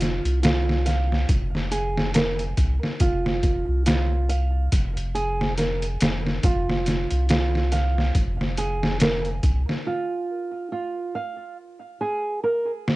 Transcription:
Already playing: sub bass F1, nylon-string guitar F4
0.01 snare, closed hi-hat
0.25 sub bass C2, closed hi-hat
0.43 nylon-string guitar F4, snare, closed hi-hat
0.69 snare
0.86 nylon-string guitar F5, snare, closed hi-hat
1.12 snare
1.29 sub bass F1, kick, closed hi-hat
1.55 snare
1.72 nylon-string guitar G#4, closed hi-hat
1.98 snare
2.14 nylon-string guitar A#4, snare, closed hi-hat
2.39 closed hi-hat
2.57 sub bass C2, kick, closed hi-hat
2.83 snare
3.00 sub bass F1, nylon-string guitar F4, kick, closed hi-hat
3.26 snare
3.43 kick, closed hi-hat
3.68 sub bass C2
3.86 nylon-string guitar F4, snare, closed hi-hat
4.29 nylon-string guitar F5, closed hi-hat
4.72 sub bass F1, kick, closed hi-hat
4.97 closed hi-hat
5.15 nylon-string guitar G#4, closed hi-hat
5.41 snare
5.58 nylon-string guitar A#4, snare, closed hi-hat
5.82 closed hi-hat
6.01 sub bass F1, snare, closed hi-hat
6.27 snare
6.43 sub bass F1, nylon-string guitar F4, kick, closed hi-hat
6.69 snare
6.86 snare, closed hi-hat
7.11 sub bass C2, closed hi-hat
7.29 nylon-string guitar F4, snare, closed hi-hat
7.55 snare
7.72 nylon-string guitar F5, snare, closed hi-hat
7.98 snare
8.15 sub bass F1, kick, closed hi-hat
8.41 snare
8.57 nylon-string guitar G#4, closed hi-hat
8.83 snare
9.00 nylon-string guitar A#4, snare, closed hi-hat
9.25 closed hi-hat
9.43 sub bass C2, kick, closed hi-hat
9.69 snare
9.87 nylon-string guitar F4
10.72 nylon-string guitar F4
11.15 nylon-string guitar F5
12.01 nylon-string guitar G#4
12.44 nylon-string guitar A#4
12.88 snare

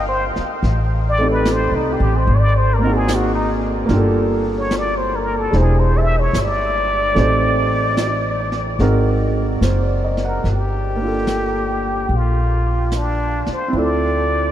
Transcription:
Already playing: upright bass G1, grand piano C4 D4 D#4 G4 A#4
0.09 muted trumpet C5
0.36 muted upright bass stroke, snare
0.63 upright bass A1, brush sweep, snare
1.10 muted trumpet D5
1.18 grand piano A3 C4 D#4 G4
1.24 grand piano A4
1.32 muted trumpet B4
1.45 snare, hi-hat pedal
1.52 muted trumpet C5
1.72 upright bass C2
1.76 muted trumpet D#4
1.93 muted trumpet G4
2.00 upright bass A1
2.17 muted trumpet C5
2.27 upright bass G#1, brush sweep
2.35 muted trumpet D5
2.58 muted trumpet C5
2.74 muted trumpet A#4
2.78 grand piano A#3 C4
2.85 grand piano D#4 F#4
2.90 grand piano G#4
2.96 muted trumpet G#4
3.08 snare, hi-hat pedal
3.15 muted trumpet F#4
3.35 muted trumpet D#4
3.85 upright bass G1, grand piano A#3 D4, brush sweep, snare
3.90 grand piano F4 G4
3.96 grand piano A4
4.59 muted trumpet C#5
4.71 snare, hi-hat pedal
4.78 muted trumpet D5
4.98 muted trumpet C5
5.16 muted trumpet A#4
5.39 muted trumpet A4
5.50 upright bass E1, grand piano G#3 D4 E4, brush sweep, snare
5.54 grand piano G4 C5
5.60 muted trumpet G#4
5.80 muted trumpet C5
5.97 muted trumpet E5
6.19 muted trumpet C#5
6.33 upright bass G1, snare, hi-hat pedal
6.42 muted trumpet D5
7.14 upright bass A1, grand piano A3 C4 D#4 G4, brush sweep, snare
7.19 grand piano C5
7.97 grand piano D#5, snare, hi-hat pedal
8.40 grand piano D5
8.52 snare
8.79 upright bass G#1, grand piano G#3 C4 D#4 F#4 A#4, brush sweep, snare
9.61 upright bass F#1, grand piano C5, snare, hi-hat pedal
9.83 grand piano D5
10.05 grand piano D#5
10.17 snare
10.25 muted trumpet A#4, grand piano F#5
10.44 upright bass G1, brush sweep, snare
10.52 muted trumpet G4
10.96 grand piano A#3 D4
11.04 grand piano F4 A4
11.27 snare, hi-hat pedal
12.09 upright bass A#1, brush sweep
12.16 muted trumpet F4
12.92 snare, hi-hat pedal
12.97 muted trumpet D4
13.46 muted upright bass stroke, snare
13.53 muted trumpet C5
13.68 grand piano C4 E4
13.73 upright bass D2, grand piano F4, brush sweep
13.78 grand piano A4, muted trumpet D5

